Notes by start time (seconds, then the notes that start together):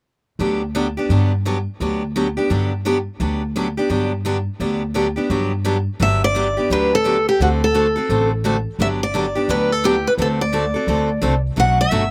0.39 D2 D3 F#3 B3 D4 G4
0.75 D3 F#3 B3 D4 G4
0.97 B3 D4 G4
1.09 G2 D3 F#3 B3 D4 G4
1.45 D3 F#3 B3 D4 G4
1.80 D2 D3 F#3 B3 D4 G4
2.16 D3 F#3 B3 D4 G4
2.37 B3 D4 G4
2.50 G2 D3 F#3 B3 D4 G4
2.85 D3 F#3 B3 D4 G4
3.20 D2 D3 F#3 B3 D4 G4
3.56 D3 F#3 B3 D4 G4
3.77 B3 D4 G4
3.89 G2 D3 F#3 B3 D4 G4
4.25 D3 F#3 B3 D4 G4
4.60 D2 D3 F#3 B3 D4 G4
4.94 D3 F#3 B3 D4 G4
5.16 B3 D4 G4
5.30 G2 D3 F#3 B3 D4 G4
5.64 D3 F#3 B3 D4 G4
6.00 G1 D3 F#3 B3 D4 G4 E5
6.24 D5
6.35 D3 F#3 B3 D4 G4
6.57 B3 D4 G4
6.70 D2 D3 F#3 B3 D4 G4 B4
6.95 A4
7.04 D3 F#3 B3 D4 G4
7.29 G4
7.40 D2 D3 A3 C4 F#4 A4
7.64 A4
7.74 D3 A3 C4 F#4 A4
7.96 C4 F#4 A4
8.09 A1 D3 A3 C4 F#4 A4
8.44 D3 A3 C4 F#4 A4
8.79 G1 D3 F#3 B3 D4 G4 E5
9.03 D5
9.14 D3 F#3 B3 D4 G4
9.35 B3 D4 G4
9.48 D2 D3 F#3 B3 D4 G4 B4
9.72 A4
9.84 D3 F#3 B3 D4 G4
10.07 B4
10.18 D2 D3 A3 C4 F#4 A4
10.22 A4
10.41 D5
10.52 D3 A3 C4 F#4 A4
10.74 C4 F#4 A4
10.87 D2 D3 A3 C4 F#4 A4
11.21 C2 D3 A3 C4 F#4 A4
11.56 B1 B2 F#3 A3 D4 F#4 F#5
11.81 E5
11.91 G1 B2 F#3 A3 D4 F#4